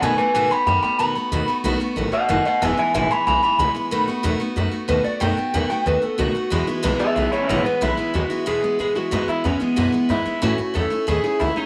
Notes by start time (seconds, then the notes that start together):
0.01 B2 D#3 A3 B3 F#4 B4 G#5
0.17 A3 B3 F#4 B4 G#5, muted upright bass stroke
0.34 G#2 B2 D#3 A3 B3 F#4 B4 G#5
0.50 A3 B3 F#4 G5 B5, muted upright bass stroke
0.67 F#2 D#3 A3 B3 F#4 G5 B5
0.83 A3 B3 F#4 G5 B5, muted upright bass stroke
0.99 E2 B2 D#3 A3 B3 F#4 B5
1.15 A3 B3 F#4
1.32 D#2 B2 D#3 A3 B3 F#4
1.48 A3 B3 F#4
1.64 B1 B2 D#3 A3 B3 F#4
1.80 A3 B3 F#4, muted upright bass stroke
1.96 A1 D#3 A3 B3 F#4
2.12 A3 B3 F#4 D#5 F#5, muted upright bass stroke
2.29 F#1 B2 D#3 A3 B3 F#4 D#5 F#5
2.45 A3 B3 F#4 D#5 F#5, muted upright bass stroke
2.62 E1 E2 B2 E3 G#3 B3 E4 E5 G#5
2.77 E3 G#3 B3 E4 E5 G#5, muted upright bass stroke
2.94 G#1 E2 B2 E3 G#3 B3 E4 E5 G#5
3.11 E3 G#3 B3 E4 G#5 B5, muted upright bass stroke
3.27 B1 E3 G#3 B3 E4 G#5 B5
3.43 E3 G#3 B3 E4 G#5 B5
3.58 C#2 E2 B2 E3 G#3 B3 E4 B5
3.75 E3 G#3 B3 E4
3.91 B1 B2 D#3 A3 B3 F#4
4.08 A3 B3 F#4, muted upright bass stroke
4.23 E2 B2 D#3 A3 B3 F#4
4.40 A3 B3 F#4, muted upright bass stroke
4.56 F#2 D#3 A3 B3 F#4
4.71 A3 B3 F#4
4.88 D#2 B2 D#3 A3 B3 F#4 B4
5.04 A3 B3 F#4 D5
5.20 F#2 B2 D#3 A3 B3 F#4 G5
5.37 A3 B3 F#4, muted upright bass stroke
5.54 E2 B2 D#3 A3 B3 F#4
5.70 A3 B3 F#4 G5, muted upright bass stroke
5.86 D#2 D#3 A3 B3 F#4 B4
6.02 A3 B3 F#4 A4, muted upright bass stroke
6.18 C#2 B2 D#3 A3 B3 F#4
6.35 A3 B3 F#4
6.50 E2 B2 E3 G#3 B3 E4
6.67 E3 G#3 B3 E4
6.83 C2 E2 B2 E3 G#3 B3 E4
6.99 E3 G#3 B3 E4 G#4 E5, muted upright bass stroke
7.16 B1 E3 G#3 B3 E4 G#4 E5
7.31 E3 G#3 B3 E4 C#5, muted upright bass stroke
7.42 C#4
7.48 G#1 E2 B2 E3 G#3 B3 E4 C#5
7.64 E3 G#3 B3 E4 B4, muted upright bass stroke
7.81 B1 E2 B2 E3 G#3 B3 E4
7.97 E3 G#3 B3 E4, muted upright bass stroke
8.14 D#2 E3 G#3 B3 E4 F#4
8.30 E3 G#3 B3 E4
8.46 E2 B2 E3 G#3 B3 E4 G#4
8.62 E3 G#3 B3 E4, muted upright bass stroke
8.79 B2 E3 G#3 B3 E4 G#4
8.95 E3 G#3 B3 E4 F#4, muted upright bass stroke
9.11 E2 G#2 B2 E3 G#3 B3 E4
9.28 E3 G#3 B3 E4, muted upright bass stroke
9.44 E2 E3 G#3 B3 C#4 E4
9.60 E3 G#3 B3 E4, muted upright bass stroke
9.76 E2 F#2 B2 E3 G#3 B3 E4
9.92 E3 G#3 B3 E4, muted upright bass stroke
10.09 G#2 E3 G#3 B3 E4
10.26 E3 G#3 B3 E4, muted upright bass stroke
10.42 A2 E3 A3 C#4 E4 F#4
10.58 A3 C#4 E4, muted upright bass stroke
10.74 E2 E3 A3 C#4 E4 A4
10.90 A3 C#4 E4
11.07 D#2 A2 E3 A3 C#4 E4 G#4
11.24 A3 C#4 E4 G#4
11.40 C#2 E3 A3 C#4 E4
11.56 A3 C#4 D#4 E4, muted upright bass stroke